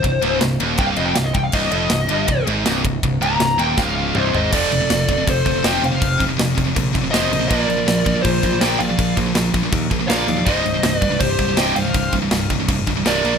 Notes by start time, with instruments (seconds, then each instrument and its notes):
Already playing: lead electric guitar C5
0.03 picked electric bass C1, distorted electric guitar C2, kick, ride
0.22 picked electric bass C#1, distorted electric guitar C#2, ride
0.41 picked electric bass C1, distorted electric guitar C2, snare, ride
0.60 picked electric bass D#1, distorted electric guitar D#2, ride
0.78 picked electric bass C1, distorted electric guitar C2, lead electric guitar G5, kick, ride
0.87 lead electric guitar F5
0.96 picked electric bass F1, distorted electric guitar F2, lead electric guitar D#5, ride
1.05 lead electric guitar G5
1.15 picked electric bass C1, distorted electric guitar C2, lead electric guitar F5, snare, ride
1.24 lead electric guitar D#5
1.34 picked electric bass C1, distorted electric guitar C2, lead electric guitar G5, kick, ride
1.44 lead electric guitar F5
1.52 picked electric bass C1, distorted electric guitar C2, lead electric guitar D#5, kick, crash
1.71 picked electric bass F1, distorted electric guitar F2, lead electric guitar D#5, ride
1.90 picked electric bass C1, distorted electric guitar C2, snare, ride
2.08 picked electric bass G1, distorted electric guitar G2, ride
2.28 picked electric bass C1, distorted electric guitar C2, kick, ride
2.47 picked electric bass G#1, distorted electric guitar G#2, ride
2.66 picked electric bass C1, distorted electric guitar C2, snare, ride
2.84 picked electric bass C1, distorted electric guitar C2, kick, ride
3.03 picked electric bass C1, distorted electric guitar C2, kick, ride
3.21 picked electric bass C#1, distorted electric guitar C#2, lead electric guitar A#5, ride
3.39 picked electric bass C1, distorted electric guitar C2, snare, ride
3.58 picked electric bass D#1, distorted electric guitar D#2, lead electric guitar G5, ride
3.77 picked electric bass C#1, distorted electric guitar C#2, lead electric guitar F5, kick, snare
3.96 lead electric guitar F5
4.15 picked electric bass C1, distorted electric guitar C2, lead electric guitar C5 D#5, mid tom
4.33 picked electric bass G#1, distorted electric guitar G#2, floor tom
4.52 picked electric bass F1, distorted electric guitar F2 C3 F3, lead electric guitar A4 D5, kick, crash
4.71 picked electric bass F1, distorted electric guitar F2 C3, crash
4.80 distorted electric guitar F2 C3
4.89 picked electric bass F1, distorted electric guitar F2 C3, snare, crash
5.08 picked electric bass F1, distorted electric guitar F2 C3, kick, crash
5.17 distorted electric guitar F2 C3
5.26 picked electric bass F1, distorted electric guitar F2 C3, lead electric guitar A4 C5, kick, crash
5.45 picked electric bass F1, distorted electric guitar F2 C3, kick, crash
5.54 distorted electric guitar F2 C3
5.62 picked electric bass F1, distorted electric guitar F2 C3 F3, lead electric guitar C5 G5, snare, crash
5.82 picked electric bass F1, distorted electric guitar F2 C3, lead electric guitar C5 F5, crash
5.91 distorted electric guitar F2 C3
5.99 picked electric bass F1, distorted electric guitar F2 C3, kick, crash
6.18 picked electric bass F1, distorted electric guitar F2 C3, kick, crash
6.27 distorted electric guitar F2 C3
6.37 picked electric bass F1, distorted electric guitar F2 C3, snare, crash
6.55 picked electric bass F1, distorted electric guitar F2 C3, kick, crash
6.64 distorted electric guitar F2 C3
6.75 picked electric bass A#1, distorted electric guitar F2 C3, kick, crash
6.93 picked electric bass F1, distorted electric guitar F2 C3, kick, crash
7.02 distorted electric guitar F2 C3
7.11 picked electric bass F1, distorted electric guitar F2 C3 F3, lead electric guitar C5 D#5, snare, crash
7.29 picked electric bass A#1, distorted electric guitar F2 C3, crash
7.39 distorted electric guitar F2 C3
7.48 picked electric bass A#1, distorted electric guitar A#2 F3 A#3, lead electric guitar A#4 D#5, kick, crash
7.59 lead electric guitar D5
7.67 picked electric bass A#1, distorted electric guitar A#2 F3, crash
7.77 distorted electric guitar A#2 F3
7.86 picked electric bass A#1, distorted electric guitar A#2 F3, snare, crash
8.04 picked electric bass A#1, distorted electric guitar A#2 F3, kick, crash
8.14 distorted electric guitar A#2 F3
8.21 picked electric bass A#1, distorted electric guitar A#2 F3, lead electric guitar F4 C5, kick, crash
8.42 picked electric bass A#1, distorted electric guitar A#2 F3, kick, crash
8.52 distorted electric guitar A#2 F3
8.59 picked electric bass A#1, distorted electric guitar A#2 F3 A#3, lead electric guitar D5 G5, snare, crash
8.79 picked electric bass A#1, distorted electric guitar A#2 F3, lead electric guitar D5 F5, crash
8.89 distorted electric guitar A#2 F3
8.97 picked electric bass A#1, distorted electric guitar A#2 F3, kick, crash
9.17 picked electric bass A#1, distorted electric guitar A#2 F3, kick, crash
9.26 distorted electric guitar A#2 F3
9.34 picked electric bass A#1, distorted electric guitar A#2 F3, snare, crash
9.54 picked electric bass A#1, distorted electric guitar A#2 F3, kick, crash
9.63 distorted electric guitar A#2 F3
9.72 picked electric bass D#2, distorted electric guitar A#2 F3, kick, crash
9.91 picked electric bass A#1, distorted electric guitar A#2 F3, kick, crash
10.01 distorted electric guitar A#2 F3
10.08 picked electric bass A#1, distorted electric guitar A#2 F3 A#3, lead electric guitar D5 F5, snare, crash
10.28 picked electric bass D#2, distorted electric guitar A#2 F3, crash
10.38 distorted electric guitar A#2 F3
10.46 picked electric bass C1, distorted electric guitar C2 G2 C3, lead electric guitar C5 D#5, kick, crash
10.64 picked electric bass C1, distorted electric guitar C2 G2, crash
10.74 distorted electric guitar C2 G2
10.83 picked electric bass C1, distorted electric guitar C2 G2, snare, crash
10.96 lead electric guitar B4 D5
11.01 picked electric bass C1, distorted electric guitar C2 G2, kick, crash
11.10 distorted electric guitar C2 G2
11.20 picked electric bass C1, distorted electric guitar C2 G2, lead electric guitar G4 C5, kick, crash
11.38 picked electric bass C1, distorted electric guitar C2 G2, kick, crash
11.49 distorted electric guitar C2 G2
11.57 picked electric bass C1, distorted electric guitar C2 G2 C3, lead electric guitar D#5 G5, snare, crash
11.75 picked electric bass C1, distorted electric guitar C2 G2, lead electric guitar C5 F5, crash
11.85 distorted electric guitar C2 G2
11.94 picked electric bass C1, distorted electric guitar C2 G2, kick, crash
12.12 picked electric bass C1, distorted electric guitar C2 G2, kick, crash
12.22 distorted electric guitar C2 G2
12.31 picked electric bass C1, distorted electric guitar C2 G2, snare, crash
12.50 picked electric bass C1, distorted electric guitar C2 G2, kick, crash
12.60 distorted electric guitar C2 G2
12.68 picked electric bass F1, distorted electric guitar C2 G2, kick, crash
12.87 picked electric bass C1, distorted electric guitar C2 G2, kick, crash
12.95 distorted electric guitar C2 G2
13.05 picked electric bass C1, distorted electric guitar C2 G2 C3, lead electric guitar A#4 D5, snare, crash
13.24 picked electric bass A#1, distorted electric guitar A#2 F3 A#3, crash
13.34 distorted electric guitar A#2 F3